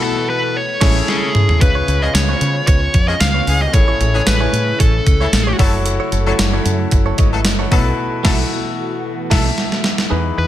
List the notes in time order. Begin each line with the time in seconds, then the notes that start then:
Already playing: B2 E3 A3 B3 E4 F#4 A4 B4
0.03 A4
0.30 B4
0.54 C#3 G#3 E4 C#5
0.81 A1 C#4 E4 G#4 A4 C#5, kick, snare, crash
1.08 G#4, snare
1.35 mid tom
1.49 floor tom
1.61 C#2 C#3 B3 F4 G#4 B4 C#5, muted clean electric guitar stroke, kick, closed hi-hat
1.75 F4 B4 C#5
1.88 C#2 F4 B4 C#5, closed hi-hat
2.02 F3 G#3 C#4 F4 G#4 B4 C#5 D#5, muted clean electric guitar stroke
2.14 C#2 C#5, muted clean electric guitar stroke, snare, closed hi-hat, tambourine
2.29 F4 G#4 B4 C5 C#5
2.36 C#5
2.41 C#3, closed hi-hat
2.55 muted clean electric guitar stroke
2.67 C#2 F4 B4 C#5, kick, closed hi-hat
2.82 muted clean electric guitar stroke
2.94 F2, muted clean electric guitar stroke, kick, closed hi-hat
3.08 F3 G#3 C#4 F4 G#4 B4 C#5 D#5
3.20 C#2 F5, muted clean electric guitar stroke, snare, closed hi-hat, tambourine
3.34 F4 B4 C#5
3.47 C#2 E3 G#3 C#4 G#4, open hi-hat
3.61 D#5, muted clean electric guitar stroke
3.73 A1 A2 A3 E4 G#4 A4 C#5, muted clean electric guitar stroke, kick, closed hi-hat
3.88 E4 G#4 C#5
4.00 A1 E4 G#4 C#5, closed hi-hat
4.14 E3 G#3 C#4 E4 G#4 A4 C#5, muted clean electric guitar stroke
4.27 A1 B4, muted clean electric guitar stroke, snare, closed hi-hat, tambourine
4.40 E4 G#4 A4 C#5 G#5
4.53 A2, muted clean electric guitar stroke, closed hi-hat
4.68 muted clean electric guitar stroke
4.79 A1 E4 G#4 A4 C#5, kick, closed hi-hat
4.94 muted clean electric guitar stroke
5.06 C#2, muted clean electric guitar stroke, kick, closed hi-hat
5.21 C#3 E3 A3 E4 G#4 C#5
5.32 A1, snare, closed hi-hat, tambourine
5.47 E4 G#4 C#5
5.58 F#1 C#3 F#3 A3 E4 F#4 A4 C#5, muted clean electric guitar stroke, kick, open hi-hat
5.73 muted clean electric guitar stroke
5.85 muted clean electric guitar stroke, closed hi-hat
6.00 E4 A4 C#5
6.12 F#1 E4 A4 C#5, closed hi-hat
6.26 F#3 A3 E4 F#4 A4 C#5, muted clean electric guitar stroke
6.38 F#1, muted clean electric guitar stroke, snare, closed hi-hat, tambourine
6.53 E4 F#4 A4 C#5
6.65 F#2, closed hi-hat
6.80 muted clean electric guitar stroke
6.91 F#1, muted clean electric guitar stroke, kick, closed hi-hat
7.06 E4 A4 C#5
7.18 G#1 E4 A4 C#5 D#5, kick, closed hi-hat
7.32 F#3 A3 E4 A4 B4 E5
7.45 F#1, muted clean electric guitar stroke, snare, closed hi-hat, tambourine
7.59 E4 A4 C#5 F#5
7.71 B1 B2 E3 F#3 A3 B3 D#4 E4 F#4 A4 B4, muted clean electric guitar stroke, kick, open hi-hat
7.77 E4
7.85 muted clean electric guitar stroke
8.23 B1 F#3 A3 B3 E4 F#4 A4, kick, snare, crash
9.30 B1 F#3 A3 B3 E4 A4 E5 A5, kick, snare, crash
9.58 snare
9.72 snare
9.84 snare
9.98 snare
10.09 E2 E3 G#3 B3 D#4 E4 G#4 B4 D#5
10.25 muted clean electric guitar stroke
10.37 E2 B4, muted clean electric guitar stroke